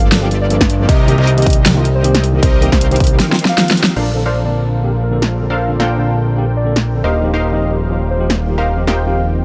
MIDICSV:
0, 0, Header, 1, 7, 480
1, 0, Start_track
1, 0, Key_signature, -2, "major"
1, 0, Tempo, 384615
1, 1108, Time_signature, 4, 2, 24, 8
1, 11790, End_track
2, 0, Start_track
2, 0, Title_t, "Soft synth lead"
2, 0, Program_c, 0, 80
2, 519, Note_on_c, 0, 74, 96
2, 757, Note_off_c, 0, 74, 0
2, 1108, Note_on_c, 0, 75, 101
2, 1348, Note_off_c, 0, 75, 0
2, 1476, Note_on_c, 0, 75, 92
2, 1630, Note_off_c, 0, 75, 0
2, 1717, Note_on_c, 0, 75, 104
2, 1956, Note_off_c, 0, 75, 0
2, 2438, Note_on_c, 0, 72, 101
2, 2677, Note_off_c, 0, 72, 0
2, 3028, Note_on_c, 0, 72, 96
2, 3268, Note_off_c, 0, 72, 0
2, 3396, Note_on_c, 0, 72, 95
2, 3550, Note_off_c, 0, 72, 0
2, 3638, Note_on_c, 0, 72, 104
2, 3877, Note_off_c, 0, 72, 0
2, 4357, Note_on_c, 0, 77, 99
2, 4596, Note_off_c, 0, 77, 0
2, 4949, Note_on_c, 0, 74, 96
2, 5188, Note_off_c, 0, 74, 0
2, 5314, Note_on_c, 0, 74, 86
2, 5469, Note_off_c, 0, 74, 0
2, 5554, Note_on_c, 0, 74, 102
2, 5795, Note_off_c, 0, 74, 0
2, 6277, Note_on_c, 0, 70, 92
2, 6516, Note_off_c, 0, 70, 0
2, 6869, Note_on_c, 0, 77, 94
2, 7108, Note_off_c, 0, 77, 0
2, 7236, Note_on_c, 0, 77, 90
2, 7390, Note_off_c, 0, 77, 0
2, 7476, Note_on_c, 0, 77, 101
2, 7716, Note_off_c, 0, 77, 0
2, 8196, Note_on_c, 0, 74, 92
2, 8436, Note_off_c, 0, 74, 0
2, 8785, Note_on_c, 0, 75, 100
2, 9026, Note_off_c, 0, 75, 0
2, 9156, Note_on_c, 0, 75, 95
2, 9310, Note_off_c, 0, 75, 0
2, 9395, Note_on_c, 0, 75, 97
2, 9635, Note_off_c, 0, 75, 0
2, 10117, Note_on_c, 0, 72, 96
2, 10356, Note_off_c, 0, 72, 0
2, 10706, Note_on_c, 0, 77, 101
2, 10947, Note_off_c, 0, 77, 0
2, 11076, Note_on_c, 0, 77, 89
2, 11230, Note_off_c, 0, 77, 0
2, 11317, Note_on_c, 0, 77, 97
2, 11556, Note_off_c, 0, 77, 0
2, 11790, End_track
3, 0, Start_track
3, 0, Title_t, "Supersaw synth"
3, 0, Program_c, 1, 81
3, 0, Note_on_c, 1, 58, 100
3, 0, Note_on_c, 1, 65, 88
3, 0, Note_on_c, 1, 67, 88
3, 0, Note_on_c, 1, 69, 90
3, 0, Note_on_c, 1, 74, 106
3, 1080, Note_off_c, 1, 65, 0
3, 1081, Note_off_c, 1, 58, 0
3, 1081, Note_off_c, 1, 67, 0
3, 1081, Note_off_c, 1, 69, 0
3, 1081, Note_off_c, 1, 74, 0
3, 1106, Note_on_c, 1, 60, 74
3, 1106, Note_on_c, 1, 63, 69
3, 1106, Note_on_c, 1, 75, 86
3, 1107, Note_on_c, 1, 67, 72
3, 1107, Note_on_c, 1, 70, 69
3, 1444, Note_off_c, 1, 63, 0
3, 1445, Note_off_c, 1, 60, 0
3, 1445, Note_off_c, 1, 67, 0
3, 1445, Note_off_c, 1, 70, 0
3, 1445, Note_off_c, 1, 75, 0
3, 1474, Note_on_c, 1, 60, 91
3, 1474, Note_on_c, 1, 67, 83
3, 1474, Note_on_c, 1, 70, 82
3, 1474, Note_on_c, 1, 75, 100
3, 1475, Note_on_c, 1, 63, 85
3, 3000, Note_off_c, 1, 60, 0
3, 3000, Note_off_c, 1, 63, 0
3, 3000, Note_off_c, 1, 67, 0
3, 3000, Note_off_c, 1, 70, 0
3, 3000, Note_off_c, 1, 75, 0
3, 3026, Note_on_c, 1, 67, 69
3, 3026, Note_on_c, 1, 75, 88
3, 3027, Note_on_c, 1, 60, 77
3, 3027, Note_on_c, 1, 63, 69
3, 3027, Note_on_c, 1, 70, 67
3, 3365, Note_off_c, 1, 60, 0
3, 3365, Note_off_c, 1, 63, 0
3, 3365, Note_off_c, 1, 67, 0
3, 3365, Note_off_c, 1, 70, 0
3, 3365, Note_off_c, 1, 75, 0
3, 3396, Note_on_c, 1, 60, 101
3, 3396, Note_on_c, 1, 67, 91
3, 3396, Note_on_c, 1, 70, 91
3, 3396, Note_on_c, 1, 77, 108
3, 3397, Note_on_c, 1, 63, 93
3, 4921, Note_off_c, 1, 60, 0
3, 4921, Note_off_c, 1, 63, 0
3, 4921, Note_off_c, 1, 67, 0
3, 4921, Note_off_c, 1, 70, 0
3, 4921, Note_off_c, 1, 77, 0
3, 4947, Note_on_c, 1, 69, 68
3, 4947, Note_on_c, 1, 70, 72
3, 4948, Note_on_c, 1, 62, 73
3, 4948, Note_on_c, 1, 72, 69
3, 4948, Note_on_c, 1, 77, 86
3, 5285, Note_off_c, 1, 62, 0
3, 5285, Note_off_c, 1, 69, 0
3, 5285, Note_off_c, 1, 70, 0
3, 5285, Note_off_c, 1, 72, 0
3, 5285, Note_off_c, 1, 77, 0
3, 5314, Note_on_c, 1, 69, 82
3, 5314, Note_on_c, 1, 72, 77
3, 5315, Note_on_c, 1, 62, 82
3, 5315, Note_on_c, 1, 70, 81
3, 5315, Note_on_c, 1, 77, 96
3, 6840, Note_off_c, 1, 62, 0
3, 6840, Note_off_c, 1, 69, 0
3, 6840, Note_off_c, 1, 70, 0
3, 6840, Note_off_c, 1, 72, 0
3, 6840, Note_off_c, 1, 77, 0
3, 6866, Note_on_c, 1, 62, 72
3, 6866, Note_on_c, 1, 69, 65
3, 6866, Note_on_c, 1, 70, 63
3, 6866, Note_on_c, 1, 72, 64
3, 6866, Note_on_c, 1, 77, 83
3, 7204, Note_off_c, 1, 70, 0
3, 7204, Note_off_c, 1, 72, 0
3, 7204, Note_off_c, 1, 77, 0
3, 7205, Note_off_c, 1, 62, 0
3, 7205, Note_off_c, 1, 69, 0
3, 7235, Note_on_c, 1, 62, 92
3, 7235, Note_on_c, 1, 69, 84
3, 7235, Note_on_c, 1, 70, 89
3, 7235, Note_on_c, 1, 72, 86
3, 7235, Note_on_c, 1, 79, 102
3, 8760, Note_off_c, 1, 69, 0
3, 8760, Note_off_c, 1, 70, 0
3, 8760, Note_off_c, 1, 72, 0
3, 8760, Note_off_c, 1, 79, 0
3, 8761, Note_off_c, 1, 62, 0
3, 8786, Note_on_c, 1, 63, 76
3, 8786, Note_on_c, 1, 67, 68
3, 8786, Note_on_c, 1, 70, 70
3, 8786, Note_on_c, 1, 72, 69
3, 8786, Note_on_c, 1, 77, 81
3, 9124, Note_off_c, 1, 70, 0
3, 9125, Note_off_c, 1, 63, 0
3, 9125, Note_off_c, 1, 67, 0
3, 9125, Note_off_c, 1, 72, 0
3, 9125, Note_off_c, 1, 77, 0
3, 9154, Note_on_c, 1, 67, 82
3, 9154, Note_on_c, 1, 72, 80
3, 9154, Note_on_c, 1, 77, 95
3, 9155, Note_on_c, 1, 63, 86
3, 9155, Note_on_c, 1, 70, 77
3, 10680, Note_off_c, 1, 63, 0
3, 10680, Note_off_c, 1, 67, 0
3, 10680, Note_off_c, 1, 70, 0
3, 10680, Note_off_c, 1, 72, 0
3, 10680, Note_off_c, 1, 77, 0
3, 10706, Note_on_c, 1, 63, 72
3, 10706, Note_on_c, 1, 67, 66
3, 10706, Note_on_c, 1, 70, 65
3, 10706, Note_on_c, 1, 72, 67
3, 10707, Note_on_c, 1, 77, 80
3, 11045, Note_off_c, 1, 63, 0
3, 11045, Note_off_c, 1, 67, 0
3, 11045, Note_off_c, 1, 70, 0
3, 11045, Note_off_c, 1, 72, 0
3, 11045, Note_off_c, 1, 77, 0
3, 11074, Note_on_c, 1, 63, 98
3, 11074, Note_on_c, 1, 72, 82
3, 11074, Note_on_c, 1, 79, 108
3, 11075, Note_on_c, 1, 67, 87
3, 11075, Note_on_c, 1, 70, 85
3, 11790, Note_off_c, 1, 63, 0
3, 11790, Note_off_c, 1, 67, 0
3, 11790, Note_off_c, 1, 70, 0
3, 11790, Note_off_c, 1, 72, 0
3, 11790, Note_off_c, 1, 79, 0
3, 11790, End_track
4, 0, Start_track
4, 0, Title_t, "Ambient pad"
4, 0, Program_c, 2, 92
4, 4949, Note_on_c, 2, 58, 77
4, 4949, Note_on_c, 2, 62, 95
4, 8750, Note_off_c, 2, 58, 0
4, 8750, Note_off_c, 2, 62, 0
4, 8788, Note_on_c, 2, 51, 86
4, 8788, Note_on_c, 2, 60, 78
4, 8788, Note_on_c, 2, 65, 79
4, 8789, Note_on_c, 2, 67, 92
4, 11790, Note_off_c, 2, 51, 0
4, 11790, Note_off_c, 2, 60, 0
4, 11790, Note_off_c, 2, 65, 0
4, 11790, Note_off_c, 2, 67, 0
4, 11790, End_track
5, 0, Start_track
5, 0, Title_t, "Tine electric piano"
5, 0, Program_c, 3, 4
5, 0, Note_on_c, 3, 53, 94
5, 0, Note_on_c, 3, 58, 83
5, 0, Note_on_c, 3, 60, 85
5, 0, Note_on_c, 3, 69, 107
5, 240, Note_off_c, 3, 53, 0
5, 244, Note_off_c, 3, 58, 0
5, 248, Note_off_c, 3, 60, 0
5, 252, Note_off_c, 3, 69, 0
5, 265, Note_on_c, 3, 53, 95
5, 273, Note_on_c, 3, 58, 88
5, 281, Note_on_c, 3, 60, 85
5, 289, Note_on_c, 3, 67, 106
5, 349, Note_off_c, 3, 53, 0
5, 353, Note_off_c, 3, 58, 0
5, 357, Note_off_c, 3, 60, 0
5, 361, Note_off_c, 3, 67, 0
5, 615, Note_on_c, 3, 53, 103
5, 625, Note_on_c, 3, 58, 95
5, 632, Note_on_c, 3, 60, 91
5, 640, Note_on_c, 3, 69, 108
5, 712, Note_off_c, 3, 53, 0
5, 717, Note_off_c, 3, 58, 0
5, 720, Note_off_c, 3, 60, 0
5, 725, Note_off_c, 3, 69, 0
5, 985, Note_on_c, 3, 53, 80
5, 993, Note_on_c, 3, 58, 80
5, 1002, Note_on_c, 3, 60, 77
5, 1010, Note_on_c, 3, 69, 87
5, 1069, Note_off_c, 3, 53, 0
5, 1073, Note_off_c, 3, 58, 0
5, 1078, Note_off_c, 3, 60, 0
5, 1082, Note_off_c, 3, 69, 0
5, 1336, Note_on_c, 3, 51, 97
5, 1344, Note_on_c, 3, 58, 90
5, 1352, Note_on_c, 3, 60, 93
5, 1361, Note_on_c, 3, 67, 109
5, 1433, Note_off_c, 3, 51, 0
5, 1437, Note_off_c, 3, 58, 0
5, 1441, Note_off_c, 3, 60, 0
5, 1445, Note_off_c, 3, 67, 0
5, 1706, Note_on_c, 3, 51, 96
5, 1715, Note_on_c, 3, 58, 83
5, 1722, Note_on_c, 3, 60, 88
5, 1731, Note_on_c, 3, 67, 106
5, 2160, Note_off_c, 3, 51, 0
5, 2165, Note_off_c, 3, 58, 0
5, 2168, Note_off_c, 3, 60, 0
5, 2173, Note_off_c, 3, 67, 0
5, 2185, Note_on_c, 3, 51, 101
5, 2194, Note_on_c, 3, 58, 91
5, 2202, Note_on_c, 3, 60, 87
5, 2211, Note_on_c, 3, 65, 106
5, 2269, Note_off_c, 3, 51, 0
5, 2274, Note_off_c, 3, 58, 0
5, 2278, Note_off_c, 3, 60, 0
5, 2282, Note_off_c, 3, 65, 0
5, 2537, Note_on_c, 3, 51, 98
5, 2544, Note_on_c, 3, 58, 94
5, 2552, Note_on_c, 3, 60, 88
5, 2561, Note_on_c, 3, 67, 106
5, 2633, Note_off_c, 3, 51, 0
5, 2637, Note_off_c, 3, 58, 0
5, 2641, Note_off_c, 3, 60, 0
5, 2645, Note_off_c, 3, 67, 0
5, 2906, Note_on_c, 3, 51, 81
5, 2914, Note_on_c, 3, 58, 77
5, 2922, Note_on_c, 3, 60, 75
5, 2931, Note_on_c, 3, 67, 92
5, 2990, Note_off_c, 3, 51, 0
5, 2994, Note_off_c, 3, 58, 0
5, 2998, Note_off_c, 3, 60, 0
5, 3002, Note_off_c, 3, 67, 0
5, 3258, Note_on_c, 3, 51, 93
5, 3267, Note_on_c, 3, 58, 89
5, 3275, Note_on_c, 3, 60, 92
5, 3283, Note_on_c, 3, 67, 111
5, 3354, Note_off_c, 3, 51, 0
5, 3358, Note_off_c, 3, 58, 0
5, 3362, Note_off_c, 3, 60, 0
5, 3366, Note_off_c, 3, 67, 0
5, 3627, Note_on_c, 3, 51, 93
5, 3635, Note_on_c, 3, 58, 80
5, 3643, Note_on_c, 3, 60, 85
5, 3651, Note_on_c, 3, 67, 102
5, 4081, Note_off_c, 3, 51, 0
5, 4085, Note_off_c, 3, 58, 0
5, 4089, Note_off_c, 3, 60, 0
5, 4093, Note_off_c, 3, 67, 0
5, 4105, Note_on_c, 3, 51, 96
5, 4113, Note_on_c, 3, 58, 85
5, 4121, Note_on_c, 3, 60, 90
5, 4130, Note_on_c, 3, 65, 109
5, 4189, Note_off_c, 3, 51, 0
5, 4193, Note_off_c, 3, 58, 0
5, 4197, Note_off_c, 3, 60, 0
5, 4202, Note_off_c, 3, 65, 0
5, 4456, Note_on_c, 3, 51, 80
5, 4465, Note_on_c, 3, 58, 71
5, 4473, Note_on_c, 3, 60, 71
5, 4482, Note_on_c, 3, 65, 83
5, 4929, Note_off_c, 3, 51, 0
5, 4933, Note_off_c, 3, 58, 0
5, 4937, Note_off_c, 3, 60, 0
5, 4941, Note_off_c, 3, 65, 0
5, 5176, Note_on_c, 3, 50, 89
5, 5184, Note_on_c, 3, 58, 80
5, 5193, Note_on_c, 3, 60, 77
5, 5201, Note_on_c, 3, 69, 98
5, 5273, Note_off_c, 3, 50, 0
5, 5277, Note_off_c, 3, 58, 0
5, 5281, Note_off_c, 3, 60, 0
5, 5285, Note_off_c, 3, 69, 0
5, 5545, Note_on_c, 3, 50, 83
5, 5554, Note_on_c, 3, 58, 75
5, 5561, Note_on_c, 3, 60, 79
5, 5569, Note_on_c, 3, 81, 93
5, 6000, Note_off_c, 3, 50, 0
5, 6004, Note_off_c, 3, 58, 0
5, 6008, Note_off_c, 3, 60, 0
5, 6012, Note_off_c, 3, 81, 0
5, 6025, Note_on_c, 3, 50, 85
5, 6033, Note_on_c, 3, 58, 82
5, 6041, Note_on_c, 3, 60, 79
5, 6050, Note_on_c, 3, 67, 95
5, 6109, Note_off_c, 3, 50, 0
5, 6113, Note_off_c, 3, 58, 0
5, 6117, Note_off_c, 3, 60, 0
5, 6122, Note_off_c, 3, 67, 0
5, 6375, Note_on_c, 3, 50, 88
5, 6384, Note_on_c, 3, 58, 80
5, 6392, Note_on_c, 3, 60, 86
5, 6400, Note_on_c, 3, 69, 98
5, 6472, Note_off_c, 3, 50, 0
5, 6477, Note_off_c, 3, 58, 0
5, 6481, Note_off_c, 3, 60, 0
5, 6484, Note_off_c, 3, 69, 0
5, 6746, Note_on_c, 3, 50, 74
5, 6754, Note_on_c, 3, 58, 70
5, 6762, Note_on_c, 3, 60, 70
5, 6770, Note_on_c, 3, 69, 84
5, 6829, Note_off_c, 3, 50, 0
5, 6834, Note_off_c, 3, 58, 0
5, 6837, Note_off_c, 3, 60, 0
5, 6842, Note_off_c, 3, 69, 0
5, 7095, Note_on_c, 3, 50, 90
5, 7103, Note_on_c, 3, 58, 80
5, 7112, Note_on_c, 3, 60, 83
5, 7120, Note_on_c, 3, 69, 97
5, 7192, Note_off_c, 3, 50, 0
5, 7196, Note_off_c, 3, 58, 0
5, 7200, Note_off_c, 3, 60, 0
5, 7204, Note_off_c, 3, 69, 0
5, 7462, Note_on_c, 3, 50, 84
5, 7471, Note_on_c, 3, 58, 76
5, 7479, Note_on_c, 3, 60, 73
5, 7488, Note_on_c, 3, 81, 92
5, 7918, Note_off_c, 3, 50, 0
5, 7923, Note_off_c, 3, 58, 0
5, 7927, Note_off_c, 3, 60, 0
5, 7931, Note_off_c, 3, 81, 0
5, 7943, Note_on_c, 3, 50, 89
5, 7951, Note_on_c, 3, 58, 81
5, 7961, Note_on_c, 3, 60, 75
5, 7967, Note_on_c, 3, 67, 100
5, 8028, Note_off_c, 3, 50, 0
5, 8032, Note_off_c, 3, 58, 0
5, 8037, Note_off_c, 3, 60, 0
5, 8040, Note_off_c, 3, 67, 0
5, 8296, Note_on_c, 3, 50, 93
5, 8304, Note_on_c, 3, 58, 81
5, 8313, Note_on_c, 3, 60, 82
5, 8320, Note_on_c, 3, 69, 97
5, 8392, Note_off_c, 3, 50, 0
5, 8396, Note_off_c, 3, 58, 0
5, 8401, Note_off_c, 3, 60, 0
5, 8405, Note_off_c, 3, 69, 0
5, 8665, Note_on_c, 3, 50, 75
5, 8673, Note_on_c, 3, 58, 71
5, 8681, Note_on_c, 3, 60, 68
5, 8689, Note_on_c, 3, 69, 85
5, 8749, Note_off_c, 3, 50, 0
5, 8753, Note_off_c, 3, 58, 0
5, 8757, Note_off_c, 3, 60, 0
5, 8761, Note_off_c, 3, 69, 0
5, 9015, Note_on_c, 3, 53, 85
5, 9023, Note_on_c, 3, 60, 84
5, 9032, Note_on_c, 3, 63, 85
5, 9040, Note_on_c, 3, 67, 99
5, 9112, Note_off_c, 3, 53, 0
5, 9116, Note_off_c, 3, 60, 0
5, 9120, Note_off_c, 3, 63, 0
5, 9125, Note_off_c, 3, 67, 0
5, 9382, Note_on_c, 3, 53, 85
5, 9390, Note_on_c, 3, 60, 80
5, 9400, Note_on_c, 3, 63, 81
5, 9408, Note_on_c, 3, 67, 93
5, 9838, Note_off_c, 3, 53, 0
5, 9842, Note_off_c, 3, 60, 0
5, 9847, Note_off_c, 3, 63, 0
5, 9851, Note_off_c, 3, 67, 0
5, 9864, Note_on_c, 3, 53, 89
5, 9872, Note_on_c, 3, 60, 77
5, 9880, Note_on_c, 3, 63, 77
5, 9889, Note_on_c, 3, 65, 95
5, 9948, Note_off_c, 3, 53, 0
5, 9952, Note_off_c, 3, 60, 0
5, 9957, Note_off_c, 3, 63, 0
5, 9961, Note_off_c, 3, 65, 0
5, 10215, Note_on_c, 3, 53, 97
5, 10223, Note_on_c, 3, 60, 84
5, 10231, Note_on_c, 3, 63, 84
5, 10240, Note_on_c, 3, 67, 101
5, 10312, Note_off_c, 3, 53, 0
5, 10316, Note_off_c, 3, 60, 0
5, 10320, Note_off_c, 3, 63, 0
5, 10325, Note_off_c, 3, 67, 0
5, 10583, Note_on_c, 3, 53, 74
5, 10593, Note_on_c, 3, 60, 69
5, 10600, Note_on_c, 3, 63, 72
5, 10609, Note_on_c, 3, 67, 80
5, 10668, Note_off_c, 3, 53, 0
5, 10673, Note_off_c, 3, 60, 0
5, 10677, Note_off_c, 3, 63, 0
5, 10681, Note_off_c, 3, 67, 0
5, 10935, Note_on_c, 3, 53, 85
5, 10943, Note_on_c, 3, 60, 78
5, 10951, Note_on_c, 3, 63, 78
5, 10960, Note_on_c, 3, 67, 95
5, 11032, Note_off_c, 3, 53, 0
5, 11036, Note_off_c, 3, 60, 0
5, 11040, Note_off_c, 3, 63, 0
5, 11044, Note_off_c, 3, 67, 0
5, 11306, Note_on_c, 3, 53, 83
5, 11314, Note_on_c, 3, 60, 80
5, 11322, Note_on_c, 3, 63, 78
5, 11331, Note_on_c, 3, 67, 94
5, 11760, Note_off_c, 3, 53, 0
5, 11764, Note_off_c, 3, 60, 0
5, 11768, Note_off_c, 3, 63, 0
5, 11773, Note_off_c, 3, 67, 0
5, 11790, End_track
6, 0, Start_track
6, 0, Title_t, "Analog synth bass"
6, 0, Program_c, 4, 38
6, 0, Note_on_c, 4, 31, 97
6, 1086, Note_off_c, 4, 31, 0
6, 1109, Note_on_c, 4, 36, 97
6, 1451, Note_off_c, 4, 36, 0
6, 1477, Note_on_c, 4, 36, 109
6, 3006, Note_off_c, 4, 36, 0
6, 3029, Note_on_c, 4, 36, 95
6, 3371, Note_off_c, 4, 36, 0
6, 3398, Note_on_c, 4, 36, 101
6, 3988, Note_off_c, 4, 36, 0
6, 4948, Note_on_c, 4, 34, 87
6, 8766, Note_off_c, 4, 34, 0
6, 8787, Note_on_c, 4, 27, 89
6, 11790, Note_off_c, 4, 27, 0
6, 11790, End_track
7, 0, Start_track
7, 0, Title_t, "Drums"
7, 150, Note_on_c, 9, 38, 121
7, 150, Note_on_c, 9, 42, 82
7, 274, Note_off_c, 9, 38, 0
7, 274, Note_off_c, 9, 42, 0
7, 389, Note_on_c, 9, 42, 66
7, 513, Note_off_c, 9, 42, 0
7, 629, Note_on_c, 9, 42, 80
7, 754, Note_off_c, 9, 42, 0
7, 757, Note_on_c, 9, 36, 63
7, 759, Note_on_c, 9, 40, 83
7, 759, Note_on_c, 9, 42, 63
7, 870, Note_off_c, 9, 42, 0
7, 870, Note_on_c, 9, 42, 72
7, 882, Note_off_c, 9, 36, 0
7, 883, Note_off_c, 9, 40, 0
7, 995, Note_off_c, 9, 42, 0
7, 1108, Note_on_c, 9, 36, 111
7, 1109, Note_on_c, 9, 42, 81
7, 1233, Note_off_c, 9, 36, 0
7, 1234, Note_off_c, 9, 42, 0
7, 1349, Note_on_c, 9, 42, 65
7, 1474, Note_off_c, 9, 42, 0
7, 1589, Note_on_c, 9, 42, 85
7, 1714, Note_off_c, 9, 42, 0
7, 1719, Note_on_c, 9, 42, 55
7, 1775, Note_off_c, 9, 42, 0
7, 1775, Note_on_c, 9, 42, 71
7, 1828, Note_on_c, 9, 36, 105
7, 1830, Note_off_c, 9, 42, 0
7, 1830, Note_on_c, 9, 42, 51
7, 1874, Note_off_c, 9, 42, 0
7, 1874, Note_on_c, 9, 42, 68
7, 1909, Note_off_c, 9, 42, 0
7, 1909, Note_on_c, 9, 42, 83
7, 1953, Note_off_c, 9, 36, 0
7, 2034, Note_off_c, 9, 42, 0
7, 2069, Note_on_c, 9, 38, 116
7, 2069, Note_on_c, 9, 42, 86
7, 2194, Note_off_c, 9, 38, 0
7, 2194, Note_off_c, 9, 42, 0
7, 2310, Note_on_c, 9, 42, 71
7, 2435, Note_off_c, 9, 42, 0
7, 2550, Note_on_c, 9, 42, 84
7, 2675, Note_off_c, 9, 42, 0
7, 2678, Note_on_c, 9, 40, 81
7, 2678, Note_on_c, 9, 42, 66
7, 2790, Note_off_c, 9, 42, 0
7, 2790, Note_on_c, 9, 42, 72
7, 2803, Note_off_c, 9, 40, 0
7, 2915, Note_off_c, 9, 42, 0
7, 3029, Note_on_c, 9, 36, 115
7, 3030, Note_on_c, 9, 42, 84
7, 3154, Note_off_c, 9, 36, 0
7, 3155, Note_off_c, 9, 42, 0
7, 3270, Note_on_c, 9, 42, 67
7, 3395, Note_off_c, 9, 42, 0
7, 3398, Note_on_c, 9, 36, 63
7, 3399, Note_on_c, 9, 40, 65
7, 3510, Note_on_c, 9, 42, 80
7, 3522, Note_off_c, 9, 36, 0
7, 3523, Note_off_c, 9, 40, 0
7, 3634, Note_off_c, 9, 42, 0
7, 3637, Note_on_c, 9, 42, 52
7, 3693, Note_off_c, 9, 42, 0
7, 3693, Note_on_c, 9, 42, 74
7, 3749, Note_off_c, 9, 42, 0
7, 3749, Note_on_c, 9, 36, 106
7, 3749, Note_on_c, 9, 42, 54
7, 3791, Note_off_c, 9, 42, 0
7, 3791, Note_on_c, 9, 42, 69
7, 3828, Note_off_c, 9, 42, 0
7, 3828, Note_on_c, 9, 42, 85
7, 3874, Note_off_c, 9, 36, 0
7, 3953, Note_off_c, 9, 42, 0
7, 3989, Note_on_c, 9, 38, 70
7, 3989, Note_on_c, 9, 42, 85
7, 4114, Note_off_c, 9, 38, 0
7, 4114, Note_off_c, 9, 42, 0
7, 4149, Note_on_c, 9, 38, 75
7, 4229, Note_on_c, 9, 42, 70
7, 4273, Note_off_c, 9, 38, 0
7, 4308, Note_on_c, 9, 38, 82
7, 4354, Note_off_c, 9, 42, 0
7, 4433, Note_off_c, 9, 38, 0
7, 4467, Note_on_c, 9, 38, 95
7, 4467, Note_on_c, 9, 42, 83
7, 4592, Note_off_c, 9, 38, 0
7, 4592, Note_off_c, 9, 42, 0
7, 4595, Note_on_c, 9, 42, 65
7, 4627, Note_on_c, 9, 38, 94
7, 4708, Note_off_c, 9, 42, 0
7, 4708, Note_on_c, 9, 42, 72
7, 4752, Note_off_c, 9, 38, 0
7, 4787, Note_on_c, 9, 38, 113
7, 4833, Note_off_c, 9, 42, 0
7, 4912, Note_off_c, 9, 38, 0
7, 4947, Note_on_c, 9, 49, 74
7, 5072, Note_off_c, 9, 49, 0
7, 6517, Note_on_c, 9, 40, 73
7, 6641, Note_off_c, 9, 40, 0
7, 7237, Note_on_c, 9, 40, 57
7, 7361, Note_off_c, 9, 40, 0
7, 8437, Note_on_c, 9, 40, 73
7, 8562, Note_off_c, 9, 40, 0
7, 10357, Note_on_c, 9, 40, 70
7, 10482, Note_off_c, 9, 40, 0
7, 11076, Note_on_c, 9, 40, 54
7, 11201, Note_off_c, 9, 40, 0
7, 11790, End_track
0, 0, End_of_file